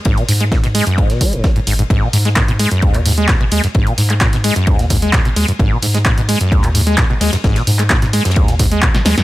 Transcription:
<<
  \new Staff \with { instrumentName = "Acid bass" } { \clef bass \time 4/4 \key gis \minor \tempo 4 = 130 gis,16 b,16 gis,16 gis16 ais,16 b,16 gis16 fis,16 gis,16 b,16 gis16 gis,16 gis16 gis,16 gis,16 gis,16 | gis,16 b,16 gis,16 gis16 ais,16 b,16 gis16 fis,16 gis,16 b,16 gis,16 gis16 ais,16 b,16 gis16 fis,16 | gis,16 b,16 gis,16 gis16 ais,16 b,16 gis16 fis,16 gis,16 b,16 gis,16 gis16 ais,16 b,16 gis16 fis,16 | gis,16 b,16 gis,16 gis16 ais,16 b,16 gis16 fis,16 gis,16 b,16 gis,16 gis16 ais,16 b,16 gis16 fis,16 |
gis,16 b,16 gis,16 gis16 ais,16 b,16 gis16 fis,16 gis,16 b,16 gis,16 gis16 ais,16 b,16 gis16 fis,16 | }
  \new Staff \with { instrumentName = "Analog synth bass" } { \clef bass \time 4/4 \key gis \minor gis,,16 r16 gis,4~ gis,16 r4 fis,,16 r8 gis,,8 | gis,,16 r16 gis,4~ gis,16 r16 dis,4~ dis,16 gis,,16 dis,16 r16 | gis,,16 r16 gis,4~ gis,16 r16 dis,4~ dis,16 gis,,16 dis,16 r16 | gis,,16 r16 gis,4~ gis,16 r16 dis,4~ dis,16 gis,,16 dis,16 r16 |
gis,,16 r16 gis,4~ gis,16 r16 dis,4~ dis,16 gis,,16 dis,16 r16 | }
  \new DrumStaff \with { instrumentName = "Drums" } \drummode { \time 4/4 <bd cymr>16 <hh cymr>16 <hho cymr>16 <hh cymr>16 <bd cymr sn>16 <hh sn>16 <hho cymr>16 <hh cymr>16 <bd cymr>16 <hh sn>16 <hho bd cymr>16 hh16 <bd cymr sn>16 hh16 <hho cymr>16 hh16 | <bd cymr>8 <hho cymr>16 <hh sn>16 <hc bd cymr sn>16 hh16 <hho cymr>16 hh16 <bd cymr>16 <hc hh cymr>16 <hho cymr>16 hh16 <hc bd cymr sn>16 cymr16 <hho cymr>16 <hh sn>16 | <bd cymr>16 <hh cymr>16 <hho cymr>16 <hc hh cymr>16 <hc bd cymr sn>16 <hh sn>16 <hho cymr>16 <hh cymr>16 <bd cymr>16 <hh sn>16 <hho bd cymr>16 hh16 <hc bd cymr sn>16 hh16 <hho cymr>16 hh16 | <bd cymr>8 <hho cymr>16 <hh sn>16 <hc bd cymr sn>16 hh16 <hho cymr>16 hh16 <bd cymr>16 <hc hh cymr>16 <hho cymr>16 hh16 <hc bd cymr sn>16 cymr16 <hho cymr sn>16 <hh cymr sn>16 |
<bd cymr sn>16 <hh cymr sn>16 <hho sn>16 <hc hh cymr>16 <hc bd cymr sn>16 <hh sn>16 <hho cymr>16 <hh cymr sn>32 <cymr sn>32 <bd cymr>16 <hh sn>16 <hho bd cymr>16 hh16 <hc bd cymr>16 <hh sn>16 <hho cymr sn>16 <hh sn>16 | }
>>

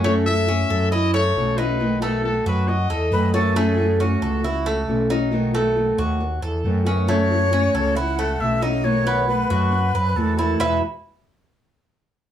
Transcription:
<<
  \new Staff \with { instrumentName = "Trumpet" } { \time 4/4 \key b \mixolydian \tempo 4 = 136 cis''8 e''4. dis''8 cis''4 b'8~ | b'8 a'8 a'8 b'8 dis''4. r8 | r1 | r1 |
r1 | r1 | r1 | }
  \new Staff \with { instrumentName = "Flute" } { \time 4/4 \key b \mixolydian r1 | r2. b'8 a'8 | gis'4 fis'2 r4 | r1 |
cis''2 fis''4 e''8 dis''8 | cis''4 b'2 a'4 | gis'8 r2. r8 | }
  \new Staff \with { instrumentName = "Cuban tres" } { \time 4/4 \key b \mixolydian a4 cis'8 a'8 e'8 a4 dis'8~ | dis'8 a4 fis'4 a'4 cis'8 | a4 cis'8 a'8 e'8 a4 dis'8~ | dis'8 a4 fis'4 a'4 cis'8 |
a4 cis'8 a'8 e'8 a4 dis'8~ | dis'8 b4 fis'4 b'4 e'8 | <e' b' e''>8 r2. r8 | }
  \new Staff \with { instrumentName = "Steel-string acoustic guitar" } { \time 4/4 \key b \mixolydian <cis e a cis' fis'>8 <e a cis' fis'>8 <e a cis' fis'>4 r4 <e a cis' fis'>8 <e a cis' fis'>8 | <b, dis a b fis'>8 <dis a b fis'>8 <dis a b fis'>4 r4 <dis a b fis'>8 <dis a b fis'>8 | <cis e a cis' fis'>8 <e a cis' fis'>8 <e a cis' fis'>4 r4 <e a cis' fis'>8 <e a cis' fis'>8 | <b, dis a b fis'>8 <dis a b fis'>8 <dis a b fis'>4 r4 <dis a b fis'>8 <dis a b fis'>8 |
<cis e a cis' fis'>8 <e a cis' fis'>8 <e a cis' fis'>4 r4 <e a cis' fis'>8 <e a cis' fis'>8 | <b, dis a b fis'>8 <dis a b fis'>8 <dis a b fis'>4 r4 <dis a b fis'>8 <dis a b fis'>8 | <e, b, e gis b fis'>8 r2. r8 | }
  \new Staff \with { instrumentName = "FM bass" } { \clef bass \time 4/4 \key b \mixolydian fis,4. fis,4. b,,4~ | b,,4. fis,4 e,8 fis,4~ | fis,4. cis,4. b,,4~ | b,,4. dis,4 e,8 fis,4~ |
fis,4. cis,4. b,,4~ | b,,4. fis,4 fis,8 e,4 | e,8 r2. r8 | }
>>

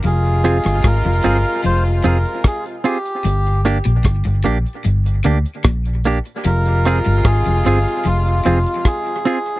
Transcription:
<<
  \new Staff \with { instrumentName = "Melodica" } { \time 4/4 \key f \dorian \tempo 4 = 75 aes'4 bes'4 c''8 bes'8 aes'8 g'8~ | g'8 r2. r8 | bes'4 aes'4 f'4 aes'4 | }
  \new Staff \with { instrumentName = "Clean electric guitar" } { \time 4/4 \key f \dorian r8 <c' f' aes'>8 r8 <c' f' aes'>8 r8 <c' f' aes'>8 r8 <c' f' aes'>8 | r8 <bes d' g'>8 r8 <bes d' g'>8 r8 <bes d' g'>8 r8 <bes d' g'>8 | r8 <c' f' aes'>8 r8 <c' f' aes'>8 r8 <c' f' aes'>8 r8 <c' f' aes'>8 | }
  \new Staff \with { instrumentName = "Horn section" } { \clef bass \time 4/4 \key f \dorian <c aes f'>2.~ <c aes f'>8 r8 | r1 | <c aes f'>2.~ <c aes f'>8 r8 | }
  \new Staff \with { instrumentName = "Clean electric guitar" } { \clef bass \time 4/4 \key f \dorian f,8 r16 g,16 aes,16 f,16 g,16 r16 f,8 f,16 r4 r16 | g,8 r16 bes,16 g,16 g,16 bes,16 r16 g,8 d16 r16 bes,8 r8 | f,8 r16 g,16 aes,16 f,16 g,16 r16 f,8 f,16 r4 r16 | }
  \new Staff \with { instrumentName = "Fingered electric bass" } { \clef bass \time 4/4 \key f \dorian f,,8. g,,16 aes,,16 f,,16 g,,16 r16 f,,8 f,,16 r4 r16 | g,,8. bes,,16 g,,16 g,,16 bes,,16 r16 g,,8 d,16 r16 bes,,8. r16 | f,,8. g,,16 aes,,16 f,,16 g,,16 r16 f,,8 f,,16 r4 r16 | }
  \new DrumStaff \with { instrumentName = "Drums" } \drummode { \time 4/4 hh16 hh16 <hh ss>16 <hh ss>16 <hh bd ss>16 hh16 hh16 hh16 hh16 hh16 hh16 hh16 <hh bd ss>16 hh16 hh16 hh16 | hh16 hh16 <hh ss>16 hh16 <hh bd ss>16 hh16 hh16 hh16 hh16 hh16 hh16 hh16 <hh bd ss>16 hh16 hh16 hh16 | hh16 hh16 <hh ss>16 hh16 <hh bd ss>16 hh16 hh16 hh16 hh16 hh16 hh16 hh16 <hh bd ss>16 hh16 hh16 hh16 | }
>>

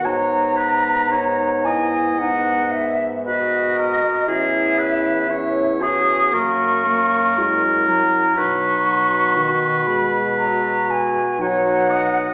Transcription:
<<
  \new Staff \with { instrumentName = "Flute" } { \time 4/4 \key b \major \tempo 4 = 58 ais''4. gis''8 fis''8 e''8 dis''4 | e''4. dis'''8 cis'''4. ais''8 | cis'''4. b''8 ais''8 gis''8 fis''4 | }
  \new Staff \with { instrumentName = "Oboe" } { \time 4/4 \key b \major cis''8 b'8 cis''8 dis''4~ dis''16 r16 b'8 ais'8 | gis'8 b'8 cis''8 gis'8 ais'2 | b'2~ b'8. r16 cis''8 dis''8 | }
  \new Staff \with { instrumentName = "Clarinet" } { \time 4/4 \key b \major dis'4 dis'8 e'8 dis'8. r16 fis'4 | e'4 e'8 fis'8 fis'4 e'4 | dis'4 fis'8. r16 fis'4 dis'4 | }
  \new Staff \with { instrumentName = "French horn" } { \time 4/4 \key b \major b2 b4.~ b16 r16 | cis'4 cis'4 ais8 ais8 gis8 fis8~ | fis4 dis8 gis4~ gis16 r16 fis4 | }
  \new Staff \with { instrumentName = "Bassoon" } { \clef bass \time 4/4 \key b \major gis,2.~ gis,8. r16 | e,2 fis,2 | b,1 | }
>>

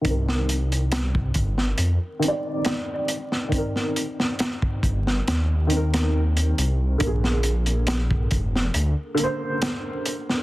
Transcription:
<<
  \new Staff \with { instrumentName = "Upright piano" } { \time 4/4 \key c \minor \tempo 4 = 69 <ees c' bes'>2~ <ees c' bes'>8 <ees c' d''>4. | <ees c' bes'>2~ <ees c' bes'>8 <ees c' bes'>4. | <d bes aes'>2~ <d bes aes'>8 <d bes c''>4. | }
  \new Staff \with { instrumentName = "Detuned saw bass" } { \clef bass \time 4/4 \key c \minor c,4. g,,8 f,8 r4. | r4. g,,8 ees,4. c,8 | bes,,4. f,,8 d,8 r4. | }
  \new DrumStaff \with { instrumentName = "Drums" } \drummode { \time 4/4 <hh bd>16 sn16 hh16 hh16 <hh sn>16 bd16 <hh bd>16 sn16 hh8 hh8 <hh sn>8 hh16 sn16 | <hh bd>16 sn16 hh16 sn16 <hh sn>16 bd16 <hh bd>16 sn16 <hh sn>8 hh16 <hh sn>16 r16 hh16 hh8 | <hh bd>16 sn16 hh16 hh16 <hh sn>16 bd16 <hh bd>16 sn16 hh8 hh8 <hh sn>8 hh16 sn16 | }
>>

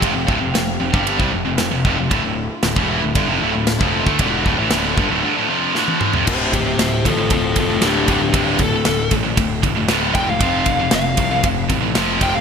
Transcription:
<<
  \new Staff \with { instrumentName = "Lead electric guitar" } { \time 4/4 \key d \minor \tempo 4 = 116 r1 | r1 | r1 | <g' c''>8 <g' c''>8 <g' c''>8 <f' a'>8 <f' a'>8 <f' a'>8 <d' g'>8 <d' g'>8 |
<d' g'>8 a'4 r2 g''16 f''16~ | f''8. f''16 f''4 r4. g''16 f''16 | }
  \new Staff \with { instrumentName = "String section" } { \time 4/4 \key d \minor << { <f c' f''>1 | <d a f'>1~ | <d a f'>1 | r1 |
r1 | r1 | } \\ { g'1 | e'1 | d'1 | r1 |
r1 | r1 | } >> }
  \new Staff \with { instrumentName = "Distorted electric guitar" } { \clef bass \time 4/4 \key d \minor <f, c>16 <f, c>16 <d, a,>16 <f, c>16 <f, c>8 <f, c>16 <g, d g>8 <c g>16 <f, c>16 <f, c>16 <f, c>16 <f, c>16 <f, c>16 <f, c>16 | <d, a,>16 <d, a,>8 r16 <d, a,>16 <e, b, e>8 <d, a,>16 <g, d>16 <f, c>16 <d, a,>16 <d, a,>8 <f, c f>8 <d a>16 | <e, b, e>8 <d, a,>16 <a, e>16 <d, a, d>8 <g, d>16 <d, a,>16 <g, d>16 <d, a,>16 <f, c f>8 <d, a, d>8. <f, c>16 | <d, a, d>8 <d, a,>16 <d, a,>16 <d, a,>8 <d, a,>16 <d, a,>16 <d, a,>8 <d, a,>16 <d, a,>16 <d, a, d>8 <d, a, d>16 <d, a,>16 |
<d, a, d>8 <d, a,>16 <d, a,>16 <d, a,>8 <d, a,>16 <d, a,>16 <d, a,>8 <d, a,>16 <d, a,>16 <d, a, d>8 <d, a, d>16 <d, a,>16 | <f, c f>8 <f, c>16 <f, c>16 <f, c>8 <f, c>16 <f, c>16 <f, c>8 <f, c>16 <f, c>16 <f, c f>8 <f, c f>16 <f, c>16 | }
  \new Staff \with { instrumentName = "Distorted electric guitar" } { \clef bass \time 4/4 \key d \minor <f, c>16 <f, c>16 <d, a,>16 <f, c>16 <f, c>8 <f, c>16 <g, d g>8 <c g>16 <f, c>16 <f, c>16 <f, c>16 <f, c>16 <f, c>16 <f, c>16 | <d, a,>16 <d, a,>8 r16 <d, a,>16 <e, b, e>8 <d, a,>16 <g, d>16 <f, c>16 <d, a,>16 <d, a,>8 <f, c f>8 <d a>16 | <e, b, e>8 <d, a,>16 <a, e>16 <d, a, d>8 <g, d>16 <d, a,>16 <g, d>16 <d, a,>16 <f, c f>8 <d, a, d>8. <f, c>16 | <d, a, d>8 <d, a,>16 <d, a,>16 <d, a,>8 <d, a,>16 <d, a,>16 <d, a,>8 <d, a,>16 <d, a,>16 <d, a, d>8 <d, a, d>16 <d, a,>16 |
<d, a, d>8 <d, a,>16 <d, a,>16 <d, a,>8 <d, a,>16 <d, a,>16 <d, a,>8 <d, a,>16 <d, a,>16 <d, a, d>8 <d, a, d>16 <d, a,>16 | <f, c f>8 <f, c>16 <f, c>16 <f, c>8 <f, c>16 <f, c>16 <f, c>8 <f, c>16 <f, c>16 <f, c f>8 <f, c f>16 <f, c>16 | }
  \new Staff \with { instrumentName = "Picked electric bass" } { \clef bass \time 4/4 \key d \minor f,,16 f,,16 d,,16 f,,16 f,,8 f,,16 g,,8 c,16 f,,16 f,,16 f,,16 f,,16 f,,16 f,,16 | d,,16 d,,8 r16 d,,16 e,,8 d,,16 g,,16 f,,16 d,,16 d,,8 f,,8 d,16 | e,,8 d,,16 a,,16 d,,8 g,,16 d,,16 r2 | d,,4 d,,8 a,,8 d,,8 f,,8 d,,8 d,,8 |
d,,4 d,,8 a,,8 d,,8 f,,8 d,,8 e,,8 | f,,4 f,,8 c,8 f,,8 a,,8 f,,8 f,,8 | }
  \new DrumStaff \with { instrumentName = "Drums" } \drummode { \time 4/4 <bd rb>8 bd8 <rb sn>8. bd16 rb16 bd8. <rb sn>8 bd8 | <bd rb>4 <rb sn>16 bd8. <bd rb>4 <rb sn>16 bd8 bd16 | <bd rb>8 bd8 <rb sn>8 bd8 r4 sn16 tommh16 toml16 tomfh16 | <cymc bd>8 <bd cymr>8 <cymr sn>8 <bd cymr>8 <bd cymr>8 <bd cymr>8 <cymr sn>8 <bd cymr>8 |
<bd cymr>8 <bd cymr>8 <cymr sn>8 <bd cymr>8 <bd cymr>8 <bd cymr>8 <cymr sn>8 <bd cymr>8 | <bd cymr>8 <bd cymr>8 <cymr sn>8 <bd cymr>8 <bd cymr>8 <bd cymr>8 <cymr sn>8 <bd cymr>8 | }
>>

